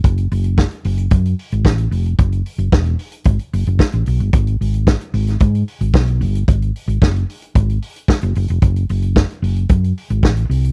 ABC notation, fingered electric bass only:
X:1
M:4/4
L:1/16
Q:1/4=112
K:F#dor
V:1 name="Fingered electric bass" clef=bass
F,,,2 F,,,3 z F,,,2 F,,2 z G,,, A,,,2 ^E,,,2 | F,,,2 z F,,, E,,,2 z2 G,,, z F,,, F,,, z A,,, B,,, =G,,, | G,,,2 G,,,3 z G,,,2 G,,2 z G,,, B,,,2 =G,,,2 | G,,,2 z G,,, F,,,2 z2 G,,,2 z3 F,,, F,,, ^E,,, |
F,,,2 F,,,3 z F,,,2 F,,2 z G,,, A,,,2 ^B,,,2 |]